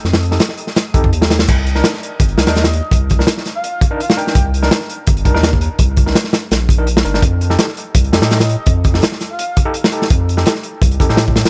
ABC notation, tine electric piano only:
X:1
M:4/4
L:1/16
Q:1/4=167
K:Cdor
V:1 name="Tine electric piano"
z3 [EGA] z6 [EGA]2 z [EGA]2 z | z3 [DEB]2 z4 z [DEB] [DEB]2 z3 | z3 [DEB] z6 z [DEB] z2 [DEB]2 | z3 [DEB]2 z4 z [DEB] [DEB]2 z3 |
z3 [DEB] z6 z [DEB] z2 [DEB] [DEB] | z3 [EGA]2 z4 z [EGA] [EGA]2 z3 | z3 [EGA] z6 z [EGA] z2 [EGA]2 | z3 [EGA]2 z4 z [EGA] [EGA]2 z3 |]